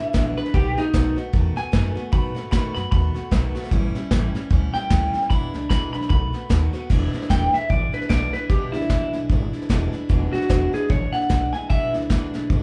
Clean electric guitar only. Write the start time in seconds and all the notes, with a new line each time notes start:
Already playing: E5
0.38 B4
0.54 G4
0.78 D#4
1.57 G#5
2.13 B5
2.52 B5
2.75 B5
2.91 B5
4.74 G5
5.30 B5
5.70 B5
5.93 B5
6.10 B5
7.30 G5
7.54 E5
7.70 D5
7.94 B4
8.09 D5
8.33 B4
8.50 G4
8.72 E4
10.33 F#4
10.74 G#4
10.90 C#5
11.13 F#5
11.53 G#5
11.70 E5